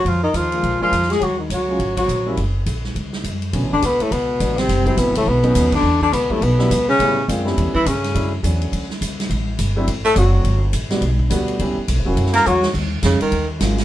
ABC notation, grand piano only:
X:1
M:4/4
L:1/8
Q:"Swing" 1/4=208
K:Ebm
V:1 name="Grand piano"
z3 [A,B,=DF]2 [A,B,DA] z2 | z3 [G,A,DF] z3 [=G,B,D_F] | z8 | [K:Bm] [D,F,A,B,C] z4 z [D,F,A,B,D] z |
z [E,F,A,=CE]3 z [F,A,B,^C^D]3 | z3 [F,G,B,DE] z [F,G,B,DE] z2 | [G,A,B,CE] z [^G,^A,=CD^E] [=G,=A,B,^C=E]2 z3 | [F,A,CDE] z [F,A,CDF]3 z3 |
z3 [F,A,=CDE] z2 [F,A,CDF]2 | z3 [G,A,B,DF] z2 [G,A,B,DF]2 | [G,B,CEG] z2 [F,^A,CEF]3 z2 | [K:Ebm] z6 [G,A,B,DF] z |]